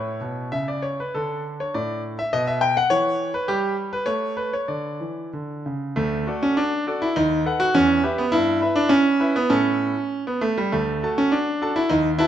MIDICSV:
0, 0, Header, 1, 2, 480
1, 0, Start_track
1, 0, Key_signature, 2, "major"
1, 0, Tempo, 617920
1, 889, Time_signature, 2, 2, 24, 8
1, 1361, Tempo, 579151
1, 3281, Tempo, 625000
1, 5201, Tempo, 584226
1, 7121, Tempo, 607287
1, 8561, Tempo, 587659
1, 9824, End_track
2, 0, Start_track
2, 0, Title_t, "Grand piano"
2, 0, Program_c, 0, 0
2, 0, Note_on_c, 0, 45, 54
2, 0, Note_on_c, 0, 64, 34
2, 0, Note_on_c, 0, 73, 70
2, 147, Note_off_c, 0, 45, 0
2, 163, Note_on_c, 0, 47, 47
2, 366, Note_off_c, 0, 73, 0
2, 392, Note_off_c, 0, 47, 0
2, 403, Note_on_c, 0, 76, 75
2, 406, Note_on_c, 0, 49, 48
2, 525, Note_off_c, 0, 76, 0
2, 528, Note_on_c, 0, 74, 62
2, 640, Note_on_c, 0, 73, 71
2, 649, Note_off_c, 0, 74, 0
2, 755, Note_off_c, 0, 49, 0
2, 766, Note_off_c, 0, 73, 0
2, 777, Note_on_c, 0, 71, 62
2, 857, Note_off_c, 0, 64, 0
2, 890, Note_on_c, 0, 69, 66
2, 893, Note_off_c, 0, 71, 0
2, 894, Note_on_c, 0, 50, 53
2, 894, Note_on_c, 0, 62, 31
2, 1103, Note_off_c, 0, 69, 0
2, 1231, Note_off_c, 0, 50, 0
2, 1244, Note_on_c, 0, 73, 68
2, 1355, Note_on_c, 0, 74, 68
2, 1358, Note_on_c, 0, 45, 54
2, 1360, Note_off_c, 0, 73, 0
2, 1573, Note_off_c, 0, 74, 0
2, 1704, Note_off_c, 0, 45, 0
2, 1722, Note_on_c, 0, 76, 83
2, 1809, Note_off_c, 0, 62, 0
2, 1839, Note_on_c, 0, 75, 95
2, 1840, Note_off_c, 0, 76, 0
2, 1842, Note_on_c, 0, 47, 67
2, 1958, Note_off_c, 0, 75, 0
2, 1959, Note_on_c, 0, 76, 84
2, 2073, Note_on_c, 0, 79, 94
2, 2077, Note_off_c, 0, 76, 0
2, 2183, Note_off_c, 0, 47, 0
2, 2194, Note_off_c, 0, 79, 0
2, 2204, Note_on_c, 0, 78, 94
2, 2313, Note_on_c, 0, 73, 105
2, 2318, Note_off_c, 0, 78, 0
2, 2319, Note_on_c, 0, 52, 70
2, 2661, Note_off_c, 0, 52, 0
2, 2671, Note_off_c, 0, 73, 0
2, 2678, Note_on_c, 0, 71, 79
2, 2794, Note_on_c, 0, 67, 89
2, 2795, Note_off_c, 0, 71, 0
2, 2797, Note_on_c, 0, 55, 68
2, 3013, Note_off_c, 0, 67, 0
2, 3148, Note_off_c, 0, 55, 0
2, 3164, Note_on_c, 0, 71, 82
2, 3272, Note_on_c, 0, 73, 89
2, 3277, Note_on_c, 0, 57, 64
2, 3285, Note_off_c, 0, 71, 0
2, 3488, Note_off_c, 0, 73, 0
2, 3511, Note_on_c, 0, 71, 75
2, 3623, Note_off_c, 0, 57, 0
2, 3634, Note_off_c, 0, 71, 0
2, 3638, Note_on_c, 0, 73, 73
2, 3751, Note_on_c, 0, 74, 60
2, 3752, Note_on_c, 0, 50, 49
2, 3760, Note_off_c, 0, 73, 0
2, 3989, Note_off_c, 0, 50, 0
2, 4001, Note_on_c, 0, 52, 46
2, 4215, Note_off_c, 0, 74, 0
2, 4236, Note_off_c, 0, 52, 0
2, 4252, Note_on_c, 0, 50, 47
2, 4485, Note_off_c, 0, 50, 0
2, 4502, Note_on_c, 0, 49, 50
2, 4728, Note_off_c, 0, 49, 0
2, 4733, Note_on_c, 0, 57, 89
2, 4739, Note_on_c, 0, 38, 71
2, 4965, Note_off_c, 0, 38, 0
2, 4970, Note_on_c, 0, 66, 54
2, 4975, Note_on_c, 0, 69, 49
2, 4979, Note_on_c, 0, 74, 53
2, 5084, Note_off_c, 0, 57, 0
2, 5091, Note_on_c, 0, 61, 96
2, 5202, Note_on_c, 0, 62, 92
2, 5203, Note_off_c, 0, 61, 0
2, 5305, Note_off_c, 0, 66, 0
2, 5308, Note_off_c, 0, 69, 0
2, 5311, Note_off_c, 0, 74, 0
2, 5418, Note_off_c, 0, 62, 0
2, 5448, Note_on_c, 0, 66, 56
2, 5452, Note_on_c, 0, 69, 54
2, 5455, Note_on_c, 0, 74, 63
2, 5570, Note_on_c, 0, 64, 97
2, 5618, Note_off_c, 0, 66, 0
2, 5621, Note_off_c, 0, 69, 0
2, 5623, Note_off_c, 0, 74, 0
2, 5686, Note_off_c, 0, 64, 0
2, 5688, Note_on_c, 0, 63, 109
2, 5691, Note_on_c, 0, 39, 73
2, 5901, Note_off_c, 0, 63, 0
2, 5918, Note_off_c, 0, 39, 0
2, 5929, Note_on_c, 0, 69, 52
2, 5932, Note_on_c, 0, 71, 57
2, 5937, Note_on_c, 0, 78, 62
2, 6046, Note_on_c, 0, 66, 111
2, 6098, Note_off_c, 0, 69, 0
2, 6100, Note_off_c, 0, 71, 0
2, 6104, Note_off_c, 0, 78, 0
2, 6163, Note_off_c, 0, 66, 0
2, 6168, Note_on_c, 0, 61, 121
2, 6170, Note_on_c, 0, 40, 85
2, 6382, Note_off_c, 0, 61, 0
2, 6398, Note_off_c, 0, 40, 0
2, 6405, Note_on_c, 0, 67, 65
2, 6407, Note_on_c, 0, 71, 66
2, 6410, Note_on_c, 0, 76, 68
2, 6528, Note_on_c, 0, 59, 93
2, 6576, Note_off_c, 0, 67, 0
2, 6577, Note_off_c, 0, 71, 0
2, 6578, Note_off_c, 0, 76, 0
2, 6639, Note_on_c, 0, 64, 114
2, 6643, Note_off_c, 0, 59, 0
2, 6646, Note_on_c, 0, 43, 81
2, 6868, Note_off_c, 0, 64, 0
2, 6875, Note_off_c, 0, 43, 0
2, 6880, Note_on_c, 0, 64, 60
2, 6883, Note_on_c, 0, 71, 57
2, 6887, Note_on_c, 0, 76, 67
2, 6998, Note_on_c, 0, 62, 107
2, 7111, Note_on_c, 0, 61, 122
2, 7120, Note_off_c, 0, 62, 0
2, 7227, Note_off_c, 0, 64, 0
2, 7228, Note_off_c, 0, 71, 0
2, 7231, Note_off_c, 0, 76, 0
2, 7352, Note_on_c, 0, 64, 65
2, 7355, Note_on_c, 0, 71, 63
2, 7361, Note_on_c, 0, 76, 65
2, 7472, Note_off_c, 0, 61, 0
2, 7479, Note_on_c, 0, 59, 105
2, 7527, Note_off_c, 0, 64, 0
2, 7529, Note_off_c, 0, 71, 0
2, 7533, Note_off_c, 0, 76, 0
2, 7589, Note_on_c, 0, 61, 108
2, 7592, Note_on_c, 0, 45, 65
2, 7592, Note_on_c, 0, 69, 57
2, 7593, Note_on_c, 0, 81, 53
2, 7598, Note_off_c, 0, 59, 0
2, 7931, Note_off_c, 0, 45, 0
2, 7979, Note_off_c, 0, 69, 0
2, 7980, Note_off_c, 0, 81, 0
2, 8163, Note_off_c, 0, 61, 0
2, 8200, Note_on_c, 0, 59, 84
2, 8313, Note_on_c, 0, 57, 98
2, 8320, Note_off_c, 0, 59, 0
2, 8437, Note_off_c, 0, 57, 0
2, 8441, Note_on_c, 0, 55, 90
2, 8558, Note_on_c, 0, 57, 93
2, 8560, Note_off_c, 0, 55, 0
2, 8564, Note_on_c, 0, 38, 65
2, 8800, Note_off_c, 0, 38, 0
2, 8809, Note_on_c, 0, 66, 52
2, 8810, Note_on_c, 0, 69, 52
2, 8815, Note_on_c, 0, 81, 58
2, 8926, Note_off_c, 0, 57, 0
2, 8930, Note_on_c, 0, 61, 102
2, 9042, Note_on_c, 0, 62, 89
2, 9049, Note_off_c, 0, 61, 0
2, 9153, Note_off_c, 0, 66, 0
2, 9154, Note_off_c, 0, 69, 0
2, 9157, Note_off_c, 0, 81, 0
2, 9287, Note_on_c, 0, 66, 57
2, 9290, Note_on_c, 0, 69, 56
2, 9294, Note_on_c, 0, 81, 61
2, 9401, Note_off_c, 0, 62, 0
2, 9403, Note_on_c, 0, 64, 102
2, 9457, Note_off_c, 0, 66, 0
2, 9459, Note_off_c, 0, 69, 0
2, 9461, Note_off_c, 0, 81, 0
2, 9515, Note_on_c, 0, 63, 109
2, 9522, Note_off_c, 0, 64, 0
2, 9524, Note_on_c, 0, 39, 73
2, 9660, Note_off_c, 0, 63, 0
2, 9752, Note_on_c, 0, 64, 116
2, 9754, Note_off_c, 0, 39, 0
2, 9758, Note_on_c, 0, 66, 55
2, 9762, Note_on_c, 0, 71, 57
2, 9766, Note_on_c, 0, 81, 65
2, 9824, Note_off_c, 0, 64, 0
2, 9824, Note_off_c, 0, 66, 0
2, 9824, Note_off_c, 0, 71, 0
2, 9824, Note_off_c, 0, 81, 0
2, 9824, End_track
0, 0, End_of_file